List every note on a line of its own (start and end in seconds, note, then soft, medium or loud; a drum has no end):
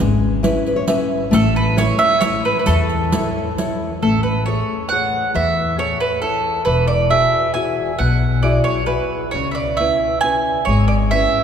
0.00 0.58 G#1 medium
0.00 0.44 G#3 medium
0.00 riq medium
0.43 0.79 C#4 soft
0.43 0.76 E4 soft
0.43 0.66 B4 medium
0.43 riq medium
0.66 0.77 B4 medium
0.66 riq soft
0.76 0.87 C#5 medium
0.87 1.23 C#4 soft
0.87 1.23 E4 soft
0.87 1.24 B4 soft
0.87 1.29 E5 medium
0.87 riq medium
1.31 1.90 A1 medium
1.31 1.75 A3 medium
1.31 1.54 A4 medium
1.31 riq medium
1.56 1.76 B4 medium
1.76 2.12 E4 soft
1.76 2.12 A4 soft
1.76 2.12 C#5 medium
1.76 2.01 C#5 medium
1.76 riq medium
1.99 2.22 E5 loud
1.99 riq soft
2.21 2.58 E4 soft
2.21 2.58 A4 soft
2.21 2.44 C#5 medium
2.21 2.58 C#5 soft
2.21 riq medium
2.45 2.58 B4 medium
2.59 2.66 B4 soft
2.66 3.25 E2 medium
2.66 3.11 E3 medium
2.66 3.52 A4 medium
2.66 riq medium
2.89 riq soft
3.12 3.48 E4 soft
3.12 3.48 A4 soft
3.12 3.48 C#5 soft
3.12 riq medium
3.58 3.93 E4 soft
3.58 3.93 A4 soft
3.58 3.93 C#5 soft
3.58 riq soft
4.02 4.60 A1 medium
4.02 4.45 A3 medium
4.02 4.23 A4 medium
4.23 4.44 B4 medium
4.46 4.83 G#4 soft
4.46 4.82 A4 soft
4.46 4.91 C#5 medium
4.46 4.83 C#5 soft
4.89 5.27 G#4 soft
4.89 5.27 A4 soft
4.89 5.30 F#5 medium
4.93 5.27 C#5 soft
5.34 5.92 E2 medium
5.34 5.77 E3 medium
5.34 5.76 E5 medium
5.78 6.14 G#4 soft
5.78 6.13 A4 soft
5.78 5.99 C#5 medium
5.78 6.14 C#5 soft
6.00 6.21 B4 medium
6.22 6.58 E4 soft
6.22 6.63 A4 medium
6.22 6.58 A4 soft
6.22 6.58 C#5 soft
6.65 7.24 E1 medium
6.65 7.09 E3 medium
6.65 6.86 B4 medium
6.88 7.08 D5 medium
7.10 7.46 E4 soft
7.10 7.46 F#4 soft
7.10 7.46 G#4 medium
7.10 7.52 E5 medium
7.54 7.90 E4 soft
7.54 7.91 F#4 soft
7.54 7.91 G#4 soft
7.54 7.98 G#5 medium
7.99 8.58 B1 medium
7.99 8.43 B2 medium
7.99 8.40 F#5 medium
8.43 8.80 E4 soft
8.43 8.80 F#4 soft
8.43 8.80 G#4 soft
8.43 8.64 D5 medium
8.64 8.86 C#5 medium
8.86 9.24 E4 soft
8.86 9.24 F#4 soft
8.86 9.24 G#4 soft
8.86 9.29 B4 medium
9.31 9.91 C#2 medium
9.31 9.77 C#3 medium
9.31 9.48 C#5 medium
9.51 9.78 D5 medium
9.51 9.56 E5 medium
9.77 10.15 C#4 soft
9.77 10.15 E4 soft
9.77 10.15 B4 soft
9.77 10.19 E5 medium
10.21 10.58 C#4 soft
10.21 10.59 E4 soft
10.21 10.59 B4 soft
10.21 10.63 G#5 medium
10.65 11.24 G#1 medium
10.65 10.86 C#5 medium
10.69 11.11 G#3 medium
10.88 10.94 D5 medium
11.11 11.44 C#4 soft
11.11 11.44 E4 soft
11.11 11.44 B4 soft
11.11 11.44 E5 medium